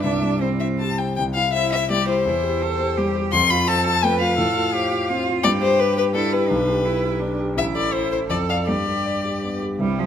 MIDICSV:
0, 0, Header, 1, 4, 480
1, 0, Start_track
1, 0, Key_signature, 0, "major"
1, 0, Tempo, 379747
1, 37, Time_signature, 3, 2, 24, 8
1, 1476, Tempo, 362538
1, 3396, Tempo, 353982
1, 10596, Tempo, 374532
1, 13331, End_track
2, 0, Start_track
2, 0, Title_t, "Violin"
2, 0, Program_c, 0, 40
2, 35, Note_on_c, 0, 76, 55
2, 462, Note_off_c, 0, 76, 0
2, 512, Note_on_c, 0, 72, 57
2, 610, Note_off_c, 0, 72, 0
2, 756, Note_on_c, 0, 76, 54
2, 853, Note_off_c, 0, 76, 0
2, 1000, Note_on_c, 0, 81, 61
2, 1246, Note_on_c, 0, 79, 48
2, 1265, Note_off_c, 0, 81, 0
2, 1458, Note_off_c, 0, 79, 0
2, 1466, Note_on_c, 0, 79, 86
2, 1564, Note_off_c, 0, 79, 0
2, 1712, Note_on_c, 0, 77, 77
2, 1951, Note_off_c, 0, 77, 0
2, 1962, Note_on_c, 0, 76, 86
2, 2196, Note_off_c, 0, 76, 0
2, 2216, Note_on_c, 0, 76, 79
2, 2443, Note_off_c, 0, 76, 0
2, 2467, Note_on_c, 0, 74, 83
2, 2687, Note_off_c, 0, 74, 0
2, 2693, Note_on_c, 0, 72, 77
2, 4099, Note_off_c, 0, 72, 0
2, 4350, Note_on_c, 0, 84, 95
2, 4600, Note_on_c, 0, 83, 85
2, 4620, Note_off_c, 0, 84, 0
2, 4838, Note_on_c, 0, 81, 95
2, 4858, Note_off_c, 0, 83, 0
2, 5079, Note_off_c, 0, 81, 0
2, 5089, Note_on_c, 0, 81, 90
2, 5325, Note_on_c, 0, 79, 89
2, 5345, Note_off_c, 0, 81, 0
2, 5540, Note_off_c, 0, 79, 0
2, 5548, Note_on_c, 0, 77, 81
2, 6950, Note_off_c, 0, 77, 0
2, 7219, Note_on_c, 0, 74, 89
2, 7315, Note_off_c, 0, 74, 0
2, 7471, Note_on_c, 0, 72, 82
2, 7703, Note_on_c, 0, 71, 90
2, 7723, Note_off_c, 0, 72, 0
2, 7940, Note_off_c, 0, 71, 0
2, 7951, Note_on_c, 0, 71, 87
2, 8045, Note_off_c, 0, 71, 0
2, 8190, Note_on_c, 0, 69, 81
2, 8417, Note_on_c, 0, 71, 84
2, 8438, Note_off_c, 0, 69, 0
2, 9864, Note_off_c, 0, 71, 0
2, 10123, Note_on_c, 0, 76, 81
2, 10217, Note_off_c, 0, 76, 0
2, 10374, Note_on_c, 0, 74, 71
2, 10599, Note_on_c, 0, 72, 80
2, 10618, Note_off_c, 0, 74, 0
2, 10832, Note_off_c, 0, 72, 0
2, 10839, Note_on_c, 0, 72, 70
2, 10932, Note_off_c, 0, 72, 0
2, 11072, Note_on_c, 0, 74, 70
2, 11168, Note_off_c, 0, 74, 0
2, 11323, Note_on_c, 0, 77, 65
2, 11418, Note_off_c, 0, 77, 0
2, 11553, Note_on_c, 0, 74, 61
2, 12740, Note_off_c, 0, 74, 0
2, 13006, Note_on_c, 0, 64, 47
2, 13331, Note_off_c, 0, 64, 0
2, 13331, End_track
3, 0, Start_track
3, 0, Title_t, "Grand piano"
3, 0, Program_c, 1, 0
3, 0, Control_c, 1, 64, 127
3, 41, Note_on_c, 1, 36, 47
3, 63, Control_c, 1, 64, 0
3, 243, Control_c, 1, 64, 127
3, 285, Note_on_c, 1, 55, 37
3, 535, Note_on_c, 1, 64, 38
3, 668, Note_off_c, 1, 55, 0
3, 779, Note_on_c, 1, 72, 34
3, 911, Note_off_c, 1, 64, 0
3, 1021, Note_on_c, 1, 67, 40
3, 1152, Note_off_c, 1, 72, 0
3, 1256, Note_on_c, 1, 72, 40
3, 1393, Note_off_c, 1, 67, 0
3, 1435, Note_off_c, 1, 36, 0
3, 1485, Note_off_c, 1, 72, 0
3, 1493, Note_on_c, 1, 36, 56
3, 1504, Control_c, 1, 64, 0
3, 1734, Note_on_c, 1, 64, 45
3, 1751, Control_c, 1, 64, 127
3, 1968, Note_on_c, 1, 72, 47
3, 2111, Note_off_c, 1, 64, 0
3, 2348, Note_off_c, 1, 72, 0
3, 2446, Note_on_c, 1, 55, 48
3, 2680, Note_on_c, 1, 64, 51
3, 2825, Note_off_c, 1, 55, 0
3, 2883, Note_off_c, 1, 36, 0
3, 2916, Note_on_c, 1, 40, 58
3, 2919, Note_off_c, 1, 64, 0
3, 2944, Control_c, 1, 64, 0
3, 3149, Control_c, 1, 64, 127
3, 3151, Note_on_c, 1, 67, 45
3, 3406, Note_on_c, 1, 72, 50
3, 3539, Note_off_c, 1, 67, 0
3, 3638, Note_on_c, 1, 67, 43
3, 3789, Note_off_c, 1, 72, 0
3, 3886, Note_on_c, 1, 55, 48
3, 4023, Note_off_c, 1, 67, 0
3, 4129, Note_on_c, 1, 67, 50
3, 4267, Note_off_c, 1, 55, 0
3, 4317, Note_off_c, 1, 40, 0
3, 4360, Note_on_c, 1, 41, 64
3, 4366, Note_off_c, 1, 67, 0
3, 4385, Control_c, 1, 64, 0
3, 4601, Note_on_c, 1, 65, 51
3, 4623, Control_c, 1, 64, 127
3, 4834, Note_on_c, 1, 72, 54
3, 4985, Note_off_c, 1, 65, 0
3, 5084, Note_on_c, 1, 65, 46
3, 5221, Note_off_c, 1, 72, 0
3, 5313, Note_on_c, 1, 57, 51
3, 5465, Note_off_c, 1, 65, 0
3, 5549, Note_on_c, 1, 65, 56
3, 5699, Note_off_c, 1, 57, 0
3, 5754, Note_off_c, 1, 41, 0
3, 5782, Note_on_c, 1, 45, 64
3, 5792, Note_off_c, 1, 65, 0
3, 5824, Control_c, 1, 64, 0
3, 6010, Control_c, 1, 64, 127
3, 6027, Note_on_c, 1, 65, 52
3, 6268, Note_on_c, 1, 72, 54
3, 6412, Note_off_c, 1, 65, 0
3, 6507, Note_on_c, 1, 65, 49
3, 6650, Note_off_c, 1, 72, 0
3, 6756, Note_on_c, 1, 60, 53
3, 6887, Note_off_c, 1, 65, 0
3, 6996, Note_on_c, 1, 65, 58
3, 7131, Note_off_c, 1, 60, 0
3, 7171, Note_off_c, 1, 45, 0
3, 7227, Note_off_c, 1, 65, 0
3, 7230, Note_on_c, 1, 43, 67
3, 7247, Control_c, 1, 64, 0
3, 7447, Control_c, 1, 64, 127
3, 7468, Note_on_c, 1, 67, 55
3, 7697, Note_on_c, 1, 71, 55
3, 7846, Note_off_c, 1, 67, 0
3, 7944, Note_on_c, 1, 67, 48
3, 8082, Note_off_c, 1, 71, 0
3, 8181, Note_on_c, 1, 62, 50
3, 8324, Note_off_c, 1, 67, 0
3, 8429, Note_on_c, 1, 67, 54
3, 8563, Note_off_c, 1, 62, 0
3, 8619, Note_off_c, 1, 43, 0
3, 8664, Note_off_c, 1, 67, 0
3, 8667, Note_on_c, 1, 35, 64
3, 8687, Control_c, 1, 64, 0
3, 8908, Note_on_c, 1, 67, 52
3, 8925, Control_c, 1, 64, 127
3, 9145, Note_on_c, 1, 71, 50
3, 9288, Note_off_c, 1, 67, 0
3, 9400, Note_on_c, 1, 67, 43
3, 9529, Note_off_c, 1, 71, 0
3, 9630, Note_on_c, 1, 62, 46
3, 9778, Note_off_c, 1, 67, 0
3, 9862, Note_on_c, 1, 67, 51
3, 10014, Note_off_c, 1, 62, 0
3, 10068, Note_off_c, 1, 35, 0
3, 10101, Note_on_c, 1, 33, 58
3, 10106, Note_off_c, 1, 67, 0
3, 10135, Control_c, 1, 64, 0
3, 10327, Control_c, 1, 64, 127
3, 10353, Note_on_c, 1, 69, 45
3, 10592, Note_on_c, 1, 72, 46
3, 10737, Note_off_c, 1, 69, 0
3, 10836, Note_on_c, 1, 69, 39
3, 10970, Note_off_c, 1, 72, 0
3, 11037, Note_off_c, 1, 33, 0
3, 11071, Note_off_c, 1, 69, 0
3, 11071, Note_on_c, 1, 41, 55
3, 11093, Control_c, 1, 64, 0
3, 11297, Control_c, 1, 64, 127
3, 11314, Note_on_c, 1, 69, 42
3, 11322, Note_on_c, 1, 74, 46
3, 11532, Note_off_c, 1, 69, 0
3, 11536, Note_off_c, 1, 74, 0
3, 11541, Note_off_c, 1, 41, 0
3, 11563, Note_on_c, 1, 43, 52
3, 11578, Control_c, 1, 64, 0
3, 11775, Control_c, 1, 64, 127
3, 11810, Note_on_c, 1, 67, 39
3, 12048, Note_on_c, 1, 74, 41
3, 12190, Note_off_c, 1, 67, 0
3, 12288, Note_on_c, 1, 67, 34
3, 12430, Note_off_c, 1, 74, 0
3, 12526, Note_on_c, 1, 59, 37
3, 12671, Note_off_c, 1, 67, 0
3, 12763, Note_on_c, 1, 67, 42
3, 12911, Note_off_c, 1, 59, 0
3, 12965, Note_off_c, 1, 43, 0
3, 12971, Note_off_c, 1, 67, 0
3, 12975, Note_on_c, 1, 36, 40
3, 12982, Note_on_c, 1, 60, 32
3, 12990, Note_on_c, 1, 67, 32
3, 12994, Note_on_c, 1, 76, 34
3, 13030, Control_c, 1, 64, 0
3, 13250, Control_c, 1, 64, 127
3, 13331, Note_off_c, 1, 36, 0
3, 13331, Note_off_c, 1, 60, 0
3, 13331, Note_off_c, 1, 67, 0
3, 13331, Note_off_c, 1, 76, 0
3, 13331, End_track
4, 0, Start_track
4, 0, Title_t, "Cello"
4, 0, Program_c, 2, 42
4, 43, Note_on_c, 2, 62, 70
4, 525, Note_on_c, 2, 60, 55
4, 544, Note_off_c, 2, 62, 0
4, 1242, Note_off_c, 2, 60, 0
4, 1970, Note_on_c, 2, 64, 58
4, 2411, Note_off_c, 2, 64, 0
4, 2454, Note_on_c, 2, 67, 60
4, 2916, Note_off_c, 2, 67, 0
4, 2931, Note_on_c, 2, 64, 62
4, 3398, Note_on_c, 2, 69, 69
4, 3419, Note_off_c, 2, 64, 0
4, 3877, Note_on_c, 2, 67, 57
4, 3897, Note_off_c, 2, 69, 0
4, 4339, Note_on_c, 2, 65, 66
4, 4359, Note_off_c, 2, 67, 0
4, 4826, Note_on_c, 2, 69, 69
4, 4846, Note_off_c, 2, 65, 0
4, 5302, Note_off_c, 2, 69, 0
4, 5310, Note_on_c, 2, 71, 72
4, 5767, Note_off_c, 2, 71, 0
4, 5775, Note_on_c, 2, 69, 74
4, 6276, Note_on_c, 2, 67, 71
4, 6297, Note_off_c, 2, 69, 0
4, 6747, Note_on_c, 2, 65, 73
4, 6767, Note_off_c, 2, 67, 0
4, 7217, Note_on_c, 2, 67, 74
4, 7237, Note_off_c, 2, 65, 0
4, 8173, Note_off_c, 2, 67, 0
4, 8181, Note_on_c, 2, 64, 70
4, 8652, Note_on_c, 2, 62, 59
4, 8673, Note_off_c, 2, 64, 0
4, 9135, Note_on_c, 2, 64, 59
4, 9156, Note_off_c, 2, 62, 0
4, 9603, Note_on_c, 2, 62, 56
4, 9623, Note_off_c, 2, 64, 0
4, 10082, Note_off_c, 2, 62, 0
4, 10091, Note_on_c, 2, 64, 62
4, 11041, Note_off_c, 2, 64, 0
4, 11061, Note_on_c, 2, 69, 56
4, 11548, Note_on_c, 2, 67, 51
4, 11568, Note_off_c, 2, 69, 0
4, 12762, Note_off_c, 2, 67, 0
4, 13003, Note_on_c, 2, 55, 68
4, 13236, Note_on_c, 2, 53, 60
4, 13256, Note_off_c, 2, 55, 0
4, 13331, Note_off_c, 2, 53, 0
4, 13331, End_track
0, 0, End_of_file